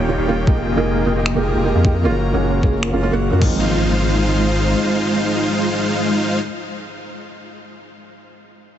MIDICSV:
0, 0, Header, 1, 7, 480
1, 0, Start_track
1, 0, Key_signature, -4, "major"
1, 0, Tempo, 392157
1, 580, Time_signature, 4, 2, 24, 8
1, 10748, End_track
2, 0, Start_track
2, 0, Title_t, "Supersaw synth"
2, 0, Program_c, 0, 81
2, 0, Note_on_c, 0, 58, 75
2, 0, Note_on_c, 0, 63, 71
2, 0, Note_on_c, 0, 67, 73
2, 0, Note_on_c, 0, 73, 68
2, 0, Note_on_c, 0, 79, 86
2, 191, Note_off_c, 0, 63, 0
2, 191, Note_off_c, 0, 67, 0
2, 191, Note_off_c, 0, 73, 0
2, 191, Note_off_c, 0, 79, 0
2, 192, Note_off_c, 0, 58, 0
2, 220, Note_on_c, 0, 58, 75
2, 220, Note_on_c, 0, 63, 66
2, 220, Note_on_c, 0, 67, 69
2, 220, Note_on_c, 0, 73, 67
2, 220, Note_on_c, 0, 77, 85
2, 551, Note_off_c, 0, 58, 0
2, 551, Note_off_c, 0, 63, 0
2, 551, Note_off_c, 0, 67, 0
2, 551, Note_off_c, 0, 73, 0
2, 551, Note_off_c, 0, 77, 0
2, 580, Note_on_c, 0, 68, 81
2, 580, Note_on_c, 0, 75, 77
2, 580, Note_on_c, 0, 79, 95
2, 581, Note_on_c, 0, 58, 88
2, 581, Note_on_c, 0, 65, 78
2, 912, Note_off_c, 0, 58, 0
2, 912, Note_off_c, 0, 65, 0
2, 912, Note_off_c, 0, 68, 0
2, 912, Note_off_c, 0, 75, 0
2, 912, Note_off_c, 0, 79, 0
2, 941, Note_on_c, 0, 68, 76
2, 941, Note_on_c, 0, 80, 90
2, 942, Note_on_c, 0, 58, 81
2, 942, Note_on_c, 0, 65, 76
2, 942, Note_on_c, 0, 75, 74
2, 1271, Note_off_c, 0, 68, 0
2, 1271, Note_off_c, 0, 80, 0
2, 1272, Note_off_c, 0, 58, 0
2, 1272, Note_off_c, 0, 65, 0
2, 1272, Note_off_c, 0, 75, 0
2, 1300, Note_on_c, 0, 75, 84
2, 1301, Note_on_c, 0, 58, 89
2, 1301, Note_on_c, 0, 65, 82
2, 1301, Note_on_c, 0, 68, 85
2, 1301, Note_on_c, 0, 79, 103
2, 1632, Note_off_c, 0, 58, 0
2, 1632, Note_off_c, 0, 65, 0
2, 1632, Note_off_c, 0, 68, 0
2, 1632, Note_off_c, 0, 75, 0
2, 1632, Note_off_c, 0, 79, 0
2, 1662, Note_on_c, 0, 79, 88
2, 1663, Note_on_c, 0, 58, 84
2, 1663, Note_on_c, 0, 65, 77
2, 1663, Note_on_c, 0, 68, 72
2, 1663, Note_on_c, 0, 75, 77
2, 1872, Note_off_c, 0, 79, 0
2, 1873, Note_off_c, 0, 58, 0
2, 1873, Note_off_c, 0, 65, 0
2, 1873, Note_off_c, 0, 68, 0
2, 1873, Note_off_c, 0, 75, 0
2, 1899, Note_on_c, 0, 65, 66
2, 1900, Note_on_c, 0, 58, 78
2, 1900, Note_on_c, 0, 75, 71
2, 1901, Note_on_c, 0, 68, 66
2, 1901, Note_on_c, 0, 79, 84
2, 2111, Note_off_c, 0, 58, 0
2, 2111, Note_off_c, 0, 65, 0
2, 2111, Note_off_c, 0, 75, 0
2, 2112, Note_off_c, 0, 68, 0
2, 2112, Note_off_c, 0, 79, 0
2, 2142, Note_on_c, 0, 58, 73
2, 2142, Note_on_c, 0, 65, 66
2, 2142, Note_on_c, 0, 68, 70
2, 2142, Note_on_c, 0, 75, 72
2, 2142, Note_on_c, 0, 77, 83
2, 2472, Note_off_c, 0, 58, 0
2, 2472, Note_off_c, 0, 65, 0
2, 2472, Note_off_c, 0, 68, 0
2, 2472, Note_off_c, 0, 75, 0
2, 2472, Note_off_c, 0, 77, 0
2, 2500, Note_on_c, 0, 58, 81
2, 2500, Note_on_c, 0, 65, 77
2, 2500, Note_on_c, 0, 66, 78
2, 2500, Note_on_c, 0, 73, 76
2, 2500, Note_on_c, 0, 77, 91
2, 2832, Note_off_c, 0, 58, 0
2, 2832, Note_off_c, 0, 65, 0
2, 2832, Note_off_c, 0, 66, 0
2, 2832, Note_off_c, 0, 73, 0
2, 2832, Note_off_c, 0, 77, 0
2, 2861, Note_on_c, 0, 66, 76
2, 2862, Note_on_c, 0, 58, 80
2, 2862, Note_on_c, 0, 65, 76
2, 2862, Note_on_c, 0, 73, 74
2, 2862, Note_on_c, 0, 78, 96
2, 3192, Note_off_c, 0, 58, 0
2, 3192, Note_off_c, 0, 65, 0
2, 3192, Note_off_c, 0, 66, 0
2, 3192, Note_off_c, 0, 73, 0
2, 3192, Note_off_c, 0, 78, 0
2, 3220, Note_on_c, 0, 58, 91
2, 3220, Note_on_c, 0, 65, 81
2, 3220, Note_on_c, 0, 66, 84
2, 3220, Note_on_c, 0, 73, 83
2, 3220, Note_on_c, 0, 77, 98
2, 3552, Note_off_c, 0, 58, 0
2, 3552, Note_off_c, 0, 65, 0
2, 3552, Note_off_c, 0, 66, 0
2, 3552, Note_off_c, 0, 73, 0
2, 3552, Note_off_c, 0, 77, 0
2, 3580, Note_on_c, 0, 66, 75
2, 3581, Note_on_c, 0, 58, 80
2, 3581, Note_on_c, 0, 65, 72
2, 3581, Note_on_c, 0, 77, 89
2, 3582, Note_on_c, 0, 73, 71
2, 3791, Note_off_c, 0, 66, 0
2, 3792, Note_off_c, 0, 58, 0
2, 3792, Note_off_c, 0, 65, 0
2, 3792, Note_off_c, 0, 73, 0
2, 3792, Note_off_c, 0, 77, 0
2, 3822, Note_on_c, 0, 66, 69
2, 3822, Note_on_c, 0, 73, 68
2, 3822, Note_on_c, 0, 77, 84
2, 3823, Note_on_c, 0, 58, 76
2, 3823, Note_on_c, 0, 65, 68
2, 4032, Note_off_c, 0, 66, 0
2, 4032, Note_off_c, 0, 73, 0
2, 4033, Note_off_c, 0, 58, 0
2, 4033, Note_off_c, 0, 65, 0
2, 4033, Note_off_c, 0, 77, 0
2, 4060, Note_on_c, 0, 58, 71
2, 4061, Note_on_c, 0, 65, 71
2, 4061, Note_on_c, 0, 66, 68
2, 4061, Note_on_c, 0, 73, 71
2, 4062, Note_on_c, 0, 75, 82
2, 4165, Note_off_c, 0, 65, 0
2, 4179, Note_off_c, 0, 58, 0
2, 4180, Note_off_c, 0, 66, 0
2, 4180, Note_off_c, 0, 73, 0
2, 4180, Note_off_c, 0, 75, 0
2, 4180, Note_on_c, 0, 56, 88
2, 4180, Note_on_c, 0, 63, 77
2, 4180, Note_on_c, 0, 65, 76
2, 4180, Note_on_c, 0, 72, 76
2, 7829, Note_off_c, 0, 56, 0
2, 7829, Note_off_c, 0, 65, 0
2, 7829, Note_off_c, 0, 72, 0
2, 7830, Note_off_c, 0, 63, 0
2, 10748, End_track
3, 0, Start_track
3, 0, Title_t, "Analog synth pad"
3, 0, Program_c, 1, 89
3, 0, Note_on_c, 1, 51, 80
3, 0, Note_on_c, 1, 58, 75
3, 0, Note_on_c, 1, 61, 77
3, 0, Note_on_c, 1, 67, 91
3, 559, Note_off_c, 1, 51, 0
3, 561, Note_off_c, 1, 58, 0
3, 561, Note_off_c, 1, 61, 0
3, 579, Note_on_c, 1, 53, 81
3, 579, Note_on_c, 1, 70, 89
3, 580, Note_on_c, 1, 63, 71
3, 581, Note_on_c, 1, 68, 71
3, 2461, Note_off_c, 1, 67, 0
3, 2480, Note_off_c, 1, 53, 0
3, 2481, Note_off_c, 1, 63, 0
3, 2481, Note_off_c, 1, 68, 0
3, 2502, Note_on_c, 1, 54, 80
3, 2503, Note_on_c, 1, 61, 74
3, 2503, Note_on_c, 1, 65, 74
3, 4144, Note_off_c, 1, 70, 0
3, 4164, Note_off_c, 1, 54, 0
3, 4165, Note_off_c, 1, 61, 0
3, 4165, Note_off_c, 1, 65, 0
3, 4182, Note_on_c, 1, 65, 77
3, 4183, Note_on_c, 1, 56, 86
3, 4183, Note_on_c, 1, 63, 76
3, 4184, Note_on_c, 1, 72, 93
3, 7831, Note_off_c, 1, 65, 0
3, 7832, Note_off_c, 1, 56, 0
3, 7832, Note_off_c, 1, 63, 0
3, 7833, Note_off_c, 1, 72, 0
3, 10748, End_track
4, 0, Start_track
4, 0, Title_t, "Felt piano"
4, 0, Program_c, 2, 0
4, 85, Note_on_c, 2, 55, 71
4, 93, Note_on_c, 2, 58, 67
4, 103, Note_on_c, 2, 61, 65
4, 110, Note_on_c, 2, 65, 81
4, 304, Note_off_c, 2, 55, 0
4, 308, Note_off_c, 2, 58, 0
4, 313, Note_off_c, 2, 61, 0
4, 316, Note_off_c, 2, 65, 0
4, 327, Note_on_c, 2, 55, 86
4, 336, Note_on_c, 2, 58, 80
4, 345, Note_on_c, 2, 61, 82
4, 352, Note_on_c, 2, 65, 97
4, 406, Note_off_c, 2, 55, 0
4, 410, Note_off_c, 2, 58, 0
4, 415, Note_off_c, 2, 61, 0
4, 418, Note_off_c, 2, 65, 0
4, 566, Note_on_c, 2, 56, 91
4, 575, Note_on_c, 2, 58, 84
4, 583, Note_on_c, 2, 63, 80
4, 590, Note_on_c, 2, 67, 95
4, 645, Note_off_c, 2, 56, 0
4, 650, Note_off_c, 2, 58, 0
4, 654, Note_off_c, 2, 63, 0
4, 657, Note_off_c, 2, 67, 0
4, 927, Note_on_c, 2, 56, 80
4, 935, Note_on_c, 2, 58, 75
4, 942, Note_on_c, 2, 63, 74
4, 951, Note_on_c, 2, 70, 90
4, 1264, Note_off_c, 2, 56, 0
4, 1268, Note_off_c, 2, 58, 0
4, 1272, Note_off_c, 2, 63, 0
4, 1276, Note_off_c, 2, 70, 0
4, 1284, Note_on_c, 2, 56, 72
4, 1295, Note_on_c, 2, 58, 66
4, 1301, Note_on_c, 2, 63, 68
4, 1309, Note_on_c, 2, 70, 81
4, 1408, Note_off_c, 2, 56, 0
4, 1413, Note_off_c, 2, 58, 0
4, 1416, Note_off_c, 2, 63, 0
4, 1420, Note_off_c, 2, 70, 0
4, 1647, Note_on_c, 2, 56, 81
4, 1655, Note_on_c, 2, 58, 75
4, 1664, Note_on_c, 2, 63, 71
4, 1672, Note_on_c, 2, 67, 89
4, 1984, Note_off_c, 2, 56, 0
4, 1988, Note_off_c, 2, 58, 0
4, 1993, Note_off_c, 2, 63, 0
4, 1997, Note_off_c, 2, 67, 0
4, 2007, Note_on_c, 2, 56, 72
4, 2016, Note_on_c, 2, 58, 68
4, 2024, Note_on_c, 2, 63, 65
4, 2031, Note_on_c, 2, 67, 83
4, 2225, Note_off_c, 2, 56, 0
4, 2229, Note_off_c, 2, 58, 0
4, 2233, Note_off_c, 2, 63, 0
4, 2237, Note_off_c, 2, 67, 0
4, 2246, Note_on_c, 2, 56, 86
4, 2254, Note_on_c, 2, 58, 81
4, 2262, Note_on_c, 2, 63, 82
4, 2271, Note_on_c, 2, 67, 96
4, 2325, Note_off_c, 2, 56, 0
4, 2329, Note_off_c, 2, 58, 0
4, 2333, Note_off_c, 2, 63, 0
4, 2338, Note_off_c, 2, 67, 0
4, 2484, Note_on_c, 2, 56, 91
4, 2494, Note_on_c, 2, 58, 77
4, 2500, Note_on_c, 2, 61, 79
4, 2510, Note_on_c, 2, 65, 101
4, 2564, Note_off_c, 2, 56, 0
4, 2569, Note_off_c, 2, 58, 0
4, 2572, Note_off_c, 2, 61, 0
4, 2577, Note_off_c, 2, 65, 0
4, 2844, Note_on_c, 2, 56, 78
4, 2852, Note_on_c, 2, 58, 72
4, 2861, Note_on_c, 2, 61, 77
4, 2868, Note_on_c, 2, 68, 90
4, 3183, Note_off_c, 2, 56, 0
4, 3187, Note_off_c, 2, 58, 0
4, 3191, Note_off_c, 2, 61, 0
4, 3195, Note_off_c, 2, 68, 0
4, 3206, Note_on_c, 2, 56, 73
4, 3215, Note_on_c, 2, 58, 66
4, 3223, Note_on_c, 2, 61, 66
4, 3229, Note_on_c, 2, 68, 78
4, 3329, Note_off_c, 2, 56, 0
4, 3333, Note_off_c, 2, 58, 0
4, 3337, Note_off_c, 2, 61, 0
4, 3340, Note_off_c, 2, 68, 0
4, 3567, Note_on_c, 2, 56, 77
4, 3577, Note_on_c, 2, 58, 74
4, 3584, Note_on_c, 2, 61, 75
4, 3592, Note_on_c, 2, 65, 88
4, 3669, Note_off_c, 2, 56, 0
4, 3674, Note_off_c, 2, 58, 0
4, 3678, Note_off_c, 2, 61, 0
4, 3682, Note_off_c, 2, 65, 0
4, 3687, Note_on_c, 2, 56, 85
4, 3694, Note_on_c, 2, 58, 78
4, 3702, Note_on_c, 2, 61, 80
4, 3710, Note_on_c, 2, 65, 100
4, 3785, Note_off_c, 2, 56, 0
4, 3789, Note_off_c, 2, 58, 0
4, 3793, Note_off_c, 2, 61, 0
4, 3797, Note_off_c, 2, 65, 0
4, 3808, Note_on_c, 2, 56, 92
4, 3817, Note_on_c, 2, 58, 82
4, 3825, Note_on_c, 2, 61, 87
4, 3832, Note_on_c, 2, 66, 97
4, 4025, Note_off_c, 2, 56, 0
4, 4030, Note_off_c, 2, 58, 0
4, 4034, Note_off_c, 2, 61, 0
4, 4037, Note_off_c, 2, 66, 0
4, 4048, Note_on_c, 2, 56, 79
4, 4056, Note_on_c, 2, 58, 74
4, 4065, Note_on_c, 2, 61, 73
4, 4072, Note_on_c, 2, 66, 89
4, 4126, Note_off_c, 2, 56, 0
4, 4130, Note_off_c, 2, 58, 0
4, 4134, Note_off_c, 2, 61, 0
4, 4138, Note_off_c, 2, 66, 0
4, 4145, Note_on_c, 2, 53, 80
4, 4169, Note_on_c, 2, 58, 76
4, 4194, Note_on_c, 2, 60, 72
4, 4220, Note_on_c, 2, 63, 89
4, 7794, Note_off_c, 2, 53, 0
4, 7818, Note_off_c, 2, 58, 0
4, 7844, Note_off_c, 2, 60, 0
4, 7869, Note_off_c, 2, 63, 0
4, 10748, End_track
5, 0, Start_track
5, 0, Title_t, "Sub bass"
5, 0, Program_c, 3, 38
5, 0, Note_on_c, 3, 27, 94
5, 195, Note_off_c, 3, 27, 0
5, 217, Note_on_c, 3, 27, 91
5, 554, Note_off_c, 3, 27, 0
5, 581, Note_on_c, 3, 29, 96
5, 917, Note_off_c, 3, 29, 0
5, 940, Note_on_c, 3, 29, 95
5, 1276, Note_off_c, 3, 29, 0
5, 1298, Note_on_c, 3, 29, 90
5, 1636, Note_off_c, 3, 29, 0
5, 1660, Note_on_c, 3, 29, 91
5, 1876, Note_off_c, 3, 29, 0
5, 1901, Note_on_c, 3, 29, 92
5, 2117, Note_off_c, 3, 29, 0
5, 2143, Note_on_c, 3, 41, 94
5, 2501, Note_on_c, 3, 30, 91
5, 2520, Note_off_c, 3, 41, 0
5, 2837, Note_off_c, 3, 30, 0
5, 2863, Note_on_c, 3, 30, 99
5, 3197, Note_off_c, 3, 30, 0
5, 3223, Note_on_c, 3, 30, 92
5, 3558, Note_off_c, 3, 30, 0
5, 3587, Note_on_c, 3, 30, 91
5, 3800, Note_off_c, 3, 30, 0
5, 3825, Note_on_c, 3, 30, 96
5, 4039, Note_off_c, 3, 30, 0
5, 4066, Note_on_c, 3, 42, 90
5, 4175, Note_off_c, 3, 42, 0
5, 4182, Note_on_c, 3, 32, 88
5, 5812, Note_off_c, 3, 32, 0
5, 10748, End_track
6, 0, Start_track
6, 0, Title_t, "Impact"
6, 0, Program_c, 4, 103
6, 4182, Note_on_c, 4, 60, 62
6, 7880, Note_off_c, 4, 60, 0
6, 10748, End_track
7, 0, Start_track
7, 0, Title_t, "Drums"
7, 579, Note_on_c, 9, 36, 107
7, 702, Note_off_c, 9, 36, 0
7, 1541, Note_on_c, 9, 26, 86
7, 1663, Note_off_c, 9, 26, 0
7, 2260, Note_on_c, 9, 36, 95
7, 2382, Note_off_c, 9, 36, 0
7, 3221, Note_on_c, 9, 36, 59
7, 3343, Note_off_c, 9, 36, 0
7, 3462, Note_on_c, 9, 26, 88
7, 3584, Note_off_c, 9, 26, 0
7, 4181, Note_on_c, 9, 36, 105
7, 4182, Note_on_c, 9, 49, 80
7, 4303, Note_off_c, 9, 36, 0
7, 4305, Note_off_c, 9, 49, 0
7, 10748, End_track
0, 0, End_of_file